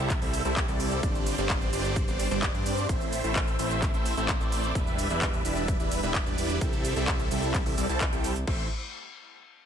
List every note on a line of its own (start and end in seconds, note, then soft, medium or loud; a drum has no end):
0.00 0.20 C2 loud
0.00 0.19 G3 medium
0.00 0.19 C4 medium
0.00 0.19 E4 medium
0.00 0.19 A4 medium
0.00 0.19 E5 medium
0.10 kick loud
0.10 clap medium
0.10 closed hi-hat medium
0.10 shaker soft
0.22 0.43 C2 loud
0.22 0.42 G3 medium
0.22 0.42 C4 medium
0.22 0.42 E4 medium
0.22 0.42 A4 medium
0.22 0.42 E5 loud
0.22 open hi-hat medium
0.22 shaker soft
0.33 open hi-hat loud
0.33 shaker medium
0.45 0.66 C2 medium
0.45 0.66 G3 loud
0.45 0.66 C4 medium
0.45 0.66 E4 medium
0.45 0.66 A4 medium
0.45 0.66 E5 loud
0.45 closed hi-hat medium
0.45 shaker soft
0.57 kick loud
0.57 clap loud
0.57 closed hi-hat medium
0.57 shaker soft
0.68 1.01 C2 loud
0.68 1.01 G3 medium
0.68 1.01 C4 medium
0.68 1.01 E4 medium
0.68 1.01 A4 medium
0.68 1.01 D5 loud
0.68 closed hi-hat soft
0.68 shaker soft
0.80 open hi-hat loud
0.80 shaker medium
0.92 closed hi-hat medium
0.92 shaker soft
1.03 1.36 G1 loud
1.03 1.35 G3 medium
1.03 1.35 C4 medium
1.03 1.35 D4 medium
1.03 kick loud
1.03 closed hi-hat medium
1.03 shaker soft
1.15 shaker soft
1.26 open hi-hat loud
1.26 shaker medium
1.38 1.71 G1 loud
1.38 1.70 G3 medium
1.38 1.70 C4 medium
1.38 1.70 D4 medium
1.38 1.70 C5 medium
1.38 1.70 D5 loud
1.38 closed hi-hat soft
1.38 shaker soft
1.50 kick loud
1.50 clap loud
1.50 closed hi-hat medium
1.50 shaker soft
1.61 shaker soft
1.73 2.06 G1 medium
1.73 2.05 G3 medium
1.73 2.05 C4 medium
1.73 2.05 D4 medium
1.73 2.05 C5 medium
1.73 2.05 D5 medium
1.73 open hi-hat loud
1.73 shaker medium
1.85 closed hi-hat medium
1.85 shaker soft
1.96 kick loud
1.96 closed hi-hat medium
1.96 shaker soft
2.08 2.29 G1 medium
2.08 2.28 G3 medium
2.08 2.28 C4 medium
2.08 2.28 D4 medium
2.08 2.28 C5 medium
2.08 2.28 D5 medium
2.08 closed hi-hat soft
2.08 shaker soft
2.19 open hi-hat loud
2.19 shaker medium
2.31 2.52 G1 medium
2.31 2.52 G3 loud
2.31 2.52 C4 medium
2.31 2.52 D4 medium
2.31 2.52 C5 medium
2.31 2.52 D5 loud
2.31 closed hi-hat medium
2.31 shaker soft
2.43 kick loud
2.43 clap loud
2.43 closed hi-hat medium
2.43 shaker soft
2.54 2.87 G2 loud
2.54 2.86 G3 medium
2.54 2.86 C4 medium
2.54 2.86 D4 medium
2.54 2.86 C5 medium
2.54 2.86 D5 loud
2.54 shaker soft
2.66 open hi-hat loud
2.66 shaker medium
2.78 closed hi-hat medium
2.78 shaker soft
2.89 3.22 A1 loud
2.89 3.21 A3 medium
2.89 3.21 C4 medium
2.89 3.21 E4 medium
2.89 3.21 C5 medium
2.89 kick loud
2.89 closed hi-hat medium
2.89 shaker soft
3.01 shaker soft
3.13 open hi-hat loud
3.13 shaker medium
3.24 3.57 A1 loud
3.24 3.56 A3 medium
3.24 3.56 C4 medium
3.24 3.56 E4 medium
3.24 3.56 C5 medium
3.24 3.56 E5 loud
3.24 closed hi-hat medium
3.24 shaker soft
3.36 kick loud
3.36 clap loud
3.36 closed hi-hat medium
3.36 shaker soft
3.48 shaker soft
3.59 3.92 A1 loud
3.59 3.91 A3 medium
3.59 3.91 C4 medium
3.59 3.91 E4 medium
3.59 3.91 C5 medium
3.59 3.91 E5 medium
3.59 open hi-hat loud
3.59 shaker medium
3.71 closed hi-hat medium
3.71 shaker soft
3.82 kick loud
3.82 clap medium
3.82 closed hi-hat medium
3.82 shaker soft
3.94 4.15 A1 loud
3.94 4.14 A3 medium
3.94 4.14 C4 medium
3.94 4.14 E4 medium
3.94 4.14 C5 medium
3.94 4.14 E5 loud
3.94 closed hi-hat soft
3.94 shaker soft
4.06 open hi-hat loud
4.06 shaker medium
4.17 4.38 A1 loud
4.17 4.38 A3 loud
4.17 4.38 C4 medium
4.17 4.38 E4 medium
4.17 4.38 C5 medium
4.17 4.38 E5 loud
4.17 closed hi-hat medium
4.17 shaker soft
4.29 kick loud
4.29 clap loud
4.29 closed hi-hat medium
4.29 shaker soft
4.41 4.73 A1 loud
4.41 4.73 A3 medium
4.41 4.73 C4 medium
4.41 4.73 E4 medium
4.41 4.73 C5 medium
4.41 4.73 D5 loud
4.41 shaker soft
4.52 open hi-hat loud
4.52 shaker medium
4.64 closed hi-hat medium
4.64 shaker soft
4.75 5.08 E1 loud
4.75 5.08 G3 medium
4.75 5.08 D4 medium
4.75 5.08 E4 medium
4.75 5.08 B4 medium
4.75 kick loud
4.75 closed hi-hat medium
4.75 shaker soft
4.87 shaker soft
4.99 open hi-hat loud
4.99 shaker medium
5.10 5.43 E1 loud
5.10 5.42 G3 medium
5.10 5.42 D4 medium
5.10 5.42 E4 medium
5.10 5.42 B4 medium
5.10 5.42 E5 loud
5.10 closed hi-hat medium
5.10 shaker soft
5.22 kick loud
5.22 clap loud
5.22 closed hi-hat medium
5.22 shaker soft
5.34 shaker soft
5.45 5.78 E1 loud
5.45 5.77 G3 medium
5.45 5.77 D4 medium
5.45 5.77 E4 medium
5.45 5.77 B4 medium
5.45 5.77 E5 medium
5.45 open hi-hat loud
5.45 shaker medium
5.57 closed hi-hat medium
5.57 shaker soft
5.68 kick loud
5.68 closed hi-hat medium
5.68 shaker soft
5.80 6.01 E1 loud
5.80 6.00 G3 medium
5.80 6.00 D4 medium
5.80 6.00 E4 medium
5.80 6.00 B4 medium
5.80 6.00 E5 medium
5.80 closed hi-hat soft
5.80 shaker soft
5.91 open hi-hat loud
5.91 shaker medium
6.03 6.24 E1 loud
6.03 6.24 G3 loud
6.03 6.24 D4 medium
6.03 6.24 E4 medium
6.03 6.24 B4 medium
6.03 6.24 E5 loud
6.03 closed hi-hat medium
6.03 shaker soft
6.15 kick loud
6.15 clap loud
6.15 closed hi-hat medium
6.15 shaker soft
6.26 6.59 E1 loud
6.26 6.59 G3 medium
6.26 6.59 D4 medium
6.26 6.59 E4 medium
6.26 6.59 B4 medium
6.26 6.59 D5 loud
6.26 shaker soft
6.38 open hi-hat loud
6.38 shaker medium
6.50 closed hi-hat medium
6.50 shaker soft
6.61 6.94 C2 loud
6.61 6.94 G3 medium
6.61 6.94 C4 medium
6.61 6.94 E4 medium
6.61 6.94 A4 medium
6.61 kick loud
6.61 closed hi-hat medium
6.61 shaker soft
6.73 closed hi-hat soft
6.73 shaker soft
6.85 open hi-hat loud
6.85 shaker medium
6.96 7.29 C2 loud
6.96 7.28 G3 medium
6.96 7.28 C4 medium
6.96 7.28 E4 medium
6.96 7.28 A4 medium
6.96 7.28 E5 loud
6.96 closed hi-hat medium
6.96 shaker soft
7.08 kick loud
7.08 clap loud
7.08 closed hi-hat medium
7.08 shaker soft
7.20 closed hi-hat soft
7.20 shaker soft
7.31 7.64 C2 loud
7.31 7.63 G3 medium
7.31 7.63 C4 medium
7.31 7.63 E4 medium
7.31 7.63 A4 medium
7.31 7.63 E5 medium
7.31 open hi-hat loud
7.31 shaker medium
7.43 closed hi-hat medium
7.43 shaker soft
7.54 kick loud
7.54 clap medium
7.54 closed hi-hat medium
7.54 shaker soft
7.66 7.75 C2 loud
7.66 7.75 G3 medium
7.66 7.75 C4 medium
7.66 7.75 E4 medium
7.66 7.75 A4 medium
7.66 7.75 E5 loud
7.66 open hi-hat medium
7.66 shaker soft
7.78 7.87 C2 loud
7.78 7.87 G3 medium
7.78 7.87 C4 medium
7.78 7.87 E4 medium
7.78 7.87 A4 medium
7.78 7.87 D5 medium
7.78 open hi-hat loud
7.78 shaker medium
7.89 8.10 C2 medium
7.89 8.02 G3 medium
7.89 8.02 C4 medium
7.89 8.02 E4 medium
7.89 8.02 A4 medium
7.89 8.02 A5 medium
7.89 closed hi-hat medium
7.89 shaker soft
8.01 kick loud
8.01 clap loud
8.01 closed hi-hat medium
8.01 shaker soft
8.13 8.45 C2 loud
8.13 8.32 G3 medium
8.13 8.32 C4 medium
8.13 8.32 E4 medium
8.13 8.32 A4 medium
8.13 8.32 G5 loud
8.13 closed hi-hat soft
8.13 shaker soft
8.24 open hi-hat loud
8.24 shaker medium
8.36 closed hi-hat medium
8.36 shaker soft
8.47 8.69 A1 loud
8.47 8.65 A3 medium
8.47 8.65 C4 medium
8.47 8.65 E4 medium
8.47 8.65 C5 medium
8.47 8.65 E5 loud
8.47 kick loud
8.47 crash medium